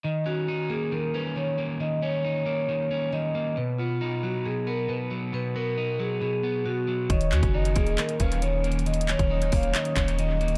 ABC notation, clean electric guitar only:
X:1
M:4/4
L:1/8
Q:1/4=136
K:Ebm
V:1 name="Clean electric guitar"
E, D E B, E, D E, B, | E, D E B, E, D E, B, | =B,, =B, ^D ^F, B,, B, B,, F, | =B,, =B, ^D ^F, B,, B, B,, F, |
E, D E B, E, D E, B, | E, D E B, E, D E, B, |]